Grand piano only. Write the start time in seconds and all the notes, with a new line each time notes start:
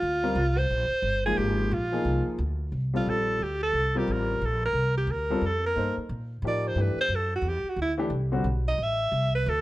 0.23 G3 C4 F4 A#4
1.26 F3 G#3 A#3 D#4
1.92 F3 A#3 D#4 G#4
2.93 G3 C4 F4 A4
3.95 G3 C4 F4 A#4
5.30 G3 C4 F4 A4
5.76 A#3 D#4 A4 C5
6.44 F3 D#4 G4 A#4
6.77 E3 A3 D4 G4
7.98 E3 A3 D4 G4
8.32 D3 G3 C4 F#4